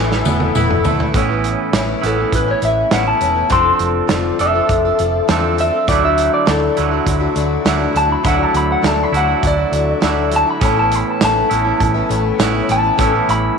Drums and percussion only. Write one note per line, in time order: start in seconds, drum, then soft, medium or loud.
0.12 snare medium
0.25 high tom medium
0.25 tambourine medium
0.40 high tom medium
0.55 mid tom medium
0.55 tambourine medium
0.71 mid tom medium
0.84 floor tom medium
0.84 tambourine medium
1.00 floor tom medium
1.14 kick loud
1.14 closed hi-hat medium
1.44 closed hi-hat medium
1.73 snare loud
1.73 closed hi-hat medium
2.03 closed hi-hat medium
2.32 kick medium
2.32 closed hi-hat medium
2.62 closed hi-hat medium
2.91 snare loud
2.91 closed hi-hat medium
3.21 closed hi-hat medium
3.50 kick loud
3.50 closed hi-hat medium
3.79 closed hi-hat medium
4.09 snare loud
4.09 closed hi-hat medium
4.39 closed hi-hat medium
4.69 kick medium
4.69 closed hi-hat medium
4.99 closed hi-hat medium
5.29 snare loud
5.29 closed hi-hat medium
5.58 closed hi-hat medium
5.88 kick loud
5.88 closed hi-hat loud
6.18 closed hi-hat medium
6.47 snare loud
6.47 closed hi-hat medium
6.77 closed hi-hat medium
7.07 kick medium
7.07 closed hi-hat medium
7.36 closed hi-hat medium
7.66 snare loud
7.66 closed hi-hat medium
7.96 closed hi-hat medium
8.25 kick loud
8.25 closed hi-hat medium
8.54 closed hi-hat medium
8.84 snare loud
8.84 closed hi-hat medium
9.14 closed hi-hat medium
9.43 kick medium
9.43 closed hi-hat medium
9.73 closed hi-hat medium
10.02 snare loud
10.02 closed hi-hat medium
10.32 closed hi-hat medium
10.61 kick loud
10.61 closed hi-hat medium
10.92 closed hi-hat medium
11.21 snare loud
11.21 closed hi-hat medium
11.21 tambourine loud
11.51 closed hi-hat medium
11.80 kick medium
11.80 closed hi-hat medium
12.11 closed hi-hat medium
12.40 snare loud
12.40 closed hi-hat medium
12.40 tambourine loud
12.69 closed hi-hat medium
12.99 kick loud
12.99 closed hi-hat medium
13.29 closed hi-hat medium